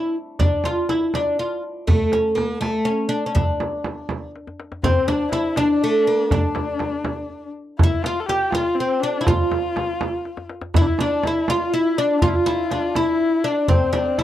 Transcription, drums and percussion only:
0.39 frame drum, tombak dum
0.64 tombak tek, frame drum
0.89 tombak tek, frame drum
1.14 tombak tek, frame drum
1.39 tombak ka
1.88 frame drum, tombak dum
2.12 tombak tek, frame drum
2.37 tombak tek, frame drum
2.62 tombak tek, frame drum
2.87 tombak ka
3.36 tombak dum, frame drum
3.60 tombak tek, frame drum
3.84 tombak tek, frame drum
4.09 tombak tek, frame drum
4.36 tombak tek
4.47 tombak ka
4.60 tombak tek
4.72 tombak ka
4.83 tombak dum, frame drum
5.08 tombak tek, frame drum
5.32 tombak tek, frame drum
5.56 tombak tek, frame drum
5.82 tombak ka
6.31 tombak dum, frame drum
6.55 tombak tek, frame drum
6.79 tombak tek, frame drum
7.05 tombak tek, frame drum
7.30 tombak ka
7.79 frame drum, tombak dum
8.04 tombak tek, frame drum
8.29 tombak tek, frame drum
8.52 tombak tek, frame drum
8.78 tombak ka
9.27 frame drum, tombak dum
9.52 tombak tek, frame drum
9.76 tombak tek, frame drum
10.01 tombak tek, frame drum
10.25 tombak tek
10.37 tombak ka
10.49 tombak tek
10.61 tombak ka
10.74 frame drum, tombak dum
10.99 frame drum
11.24 tombak tek, frame drum
11.48 tombak tek, frame drum
11.73 tombak ka
12.22 tombak dum, frame drum
12.46 tombak tek, frame drum
12.71 tombak tek, frame drum
12.95 tombak tek, frame drum
13.20 tombak ka
13.68 tombak dum, frame drum
13.93 tombak tek, frame drum
14.19 frame drum

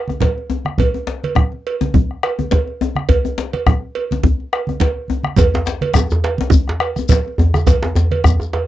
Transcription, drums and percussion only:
0.08 bombo rim, djembe slap, high conga, djembe tone
0.20 bombo low, cowbell, djembe slap, high conga, low conga
0.38 djembe slap
0.50 djembe tone
0.65 bombo rim, high conga
0.78 bombo low, cowbell, djembe slap, low conga, djembe bass
0.94 djembe tone
1.07 bombo rim, djembe slap
1.24 cowbell, high conga
1.35 bombo rim, bombo low, djembe tone, low conga
1.52 djembe slap, high conga
1.67 cowbell
1.81 djembe slap, djembe tone, high conga
1.94 bombo low, djembe bass, low conga
2.10 bombo rim, high conga
2.23 bombo rim, cowbell, high conga
2.39 bombo rim, djembe slap, djembe tone, high conga
2.51 bombo low, cowbell, djembe slap, high conga, low conga
2.67 djembe slap
2.81 djembe tone
2.95 bombo rim, high conga
3.09 bombo rim, bombo low, cowbell, djembe slap, high conga, low conga, djembe bass
3.24 djembe slap, high conga, djembe tone
3.38 djembe slap
3.53 bombo rim, cowbell, high conga
3.66 bombo rim, bombo low, high conga, djembe tone, low conga
3.95 cowbell, djembe slap
4.11 djembe slap, high conga, djembe tone
4.23 bombo low, high conga, low conga, djembe bass
4.40 djembe slap
4.53 bombo rim, cowbell
4.67 bombo rim, high conga, djembe tone
4.80 bombo low, cowbell, djembe slap, low conga
5.08 high conga, djembe tone
5.23 bombo rim, high conga
5.36 bombo low, cowbell, djembe slap, djembe tone, low conga, djembe bass, shekere
5.54 djembe slap, djembe tone
5.66 bombo rim, djembe slap, shekere
5.81 cowbell, high conga
5.94 bombo rim, bombo low, djembe slap, djembe tone, low conga, shekere
6.11 djembe slap, djembe tone, shekere
6.24 cowbell, djembe slap
6.38 djembe slap, high conga, djembe tone
6.50 bombo low, low conga, djembe bass, shekere
6.67 bombo rim, djembe slap, high conga
6.80 bombo rim, cowbell, high conga
6.96 bombo rim, djembe slap, high conga, djembe tone, shekere
7.09 bombo low, cowbell, djembe slap, high conga, low conga, shekere
7.28 djembe slap
7.38 djembe tone, djembe bass
7.54 bombo rim, high conga, djembe tone, shekere
7.67 bombo low, cowbell, djembe slap, low conga, djembe bass, shekere
7.83 djembe slap, djembe tone
7.96 bombo rim, djembe slap, djembe bass, shekere
8.11 cowbell, high conga
8.24 bombo rim, bombo low, djembe tone, low conga, djembe bass, shekere
8.40 djembe slap, djembe tone, high conga, shekere
8.53 cowbell, djembe slap

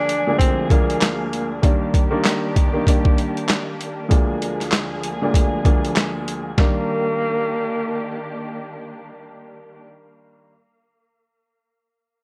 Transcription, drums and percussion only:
0.09 closed hi-hat
0.40 kick, closed hi-hat
0.70 kick, closed hi-hat
0.90 closed hi-hat
1.01 snare, clap, closed hi-hat
1.33 closed hi-hat
1.63 kick, closed hi-hat
1.94 kick, closed hi-hat
2.24 snare, clap, closed hi-hat
2.56 kick, closed hi-hat
2.87 kick, closed hi-hat
3.05 kick
3.18 closed hi-hat
3.37 closed hi-hat
3.49 snare, clap, closed hi-hat
3.80 closed hi-hat
4.11 kick, closed hi-hat
4.42 closed hi-hat
4.60 snare, closed hi-hat
4.72 snare, clap, closed hi-hat
5.04 closed hi-hat
5.34 kick, closed hi-hat
5.65 kick, closed hi-hat
5.85 closed hi-hat
5.96 snare, clap, closed hi-hat
6.28 closed hi-hat
6.58 kick, snare

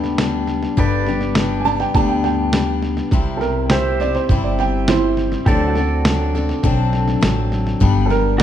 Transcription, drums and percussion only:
0.04 snare
0.18 snare, hi-hat pedal
0.47 snare
0.63 snare
0.77 kick, snare
1.06 snare
1.21 snare
1.35 snare, hi-hat pedal
1.65 snare
1.80 snare
1.94 kick, snare
2.24 snare
2.53 snare, hi-hat pedal
2.82 snare
2.97 snare
3.11 kick, snare
3.41 snare
3.70 snare, hi-hat pedal
4.00 snare
4.15 snare
4.29 kick, snare
4.59 snare
4.88 snare, hi-hat pedal
5.17 snare
5.32 snare
5.46 kick, snare
5.75 snare
6.05 snare, hi-hat pedal
6.35 snare
6.49 snare
6.63 kick, snare
6.93 snare
7.08 snare
7.23 snare, hi-hat pedal
7.52 snare
7.67 snare
7.81 kick, snare
8.10 snare
8.40 snare, hi-hat pedal

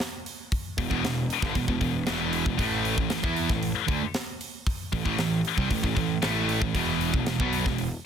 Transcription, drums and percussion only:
0.00 snare, open hi-hat
0.26 open hi-hat
0.52 kick, open hi-hat
0.78 kick, open hi-hat
0.91 kick
1.05 snare, open hi-hat
1.30 open hi-hat
1.42 kick, snare
1.55 kick, open hi-hat
1.68 kick
1.81 kick, open hi-hat
2.07 snare, open hi-hat
2.33 open hi-hat
2.46 kick
2.59 kick, open hi-hat
2.85 open hi-hat
2.98 kick
3.10 snare, open hi-hat
3.24 kick
3.36 open hi-hat
3.50 kick, snare
3.63 open hi-hat
3.88 kick, open hi-hat
4.14 snare, open hi-hat
4.41 open hi-hat
4.67 kick, open hi-hat
4.93 kick, open hi-hat
5.06 kick
5.19 snare, open hi-hat
5.45 open hi-hat
5.58 kick
5.71 kick, open hi-hat
5.84 kick
5.97 kick, open hi-hat
6.22 snare, open hi-hat
6.49 open hi-hat
6.62 kick
6.75 kick, open hi-hat
7.01 open hi-hat
7.14 kick
7.26 snare, open hi-hat
7.40 kick
7.53 open hi-hat
7.66 kick, snare
7.78 open hi-hat

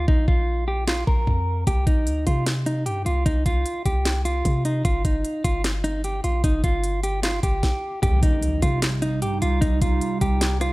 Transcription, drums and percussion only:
0.08 kick
0.28 kick
0.87 snare, clap
1.07 kick
1.27 kick
1.67 kick, closed hi-hat
1.87 kick, closed hi-hat
2.07 closed hi-hat
2.27 kick, closed hi-hat
2.46 snare, clap, closed hi-hat
2.66 closed hi-hat
2.86 closed hi-hat
3.06 closed hi-hat
3.26 kick, closed hi-hat
3.46 kick, closed hi-hat
3.66 closed hi-hat
3.86 kick, closed hi-hat
4.05 snare, clap, closed hi-hat
4.25 closed hi-hat
4.45 kick, closed hi-hat
4.65 closed hi-hat
4.85 kick, closed hi-hat
5.05 kick, closed hi-hat
5.25 closed hi-hat
5.44 kick, closed hi-hat
5.64 snare, clap, closed hi-hat
5.84 closed hi-hat
6.04 closed hi-hat
6.24 closed hi-hat
6.44 kick, closed hi-hat
6.64 kick, closed hi-hat
6.84 closed hi-hat
7.03 closed hi-hat
7.23 snare, clap, closed hi-hat
7.43 kick, closed hi-hat
7.63 kick, snare
8.03 kick, closed hi-hat
8.23 kick, closed hi-hat
8.43 closed hi-hat
8.62 kick, closed hi-hat
8.82 snare, clap, closed hi-hat
9.02 closed hi-hat
9.22 closed hi-hat
9.42 closed hi-hat
9.62 kick, closed hi-hat
9.82 kick, closed hi-hat
10.01 closed hi-hat
10.21 kick, closed hi-hat
10.41 snare, clap, closed hi-hat
10.61 cross-stick, closed hi-hat

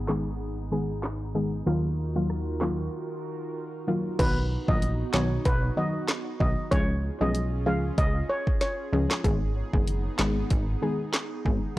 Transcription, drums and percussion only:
0.08 snare, clap
1.03 snare, clap
2.30 cross-stick
2.61 snare, clap
4.19 kick, closed hi-hat, crash
4.68 kick
4.82 closed hi-hat
5.14 snare, clap
5.45 kick, closed hi-hat
6.08 snare, clap, closed hi-hat
6.40 kick
6.72 kick, closed hi-hat
7.35 closed hi-hat
7.98 kick, closed hi-hat
8.47 kick
8.61 snare, closed hi-hat
9.11 snare, clap
9.24 kick, closed hi-hat
9.73 kick
9.87 closed hi-hat
10.19 snare, clap
10.50 kick, closed hi-hat
11.14 snare, clap, closed hi-hat
11.46 kick

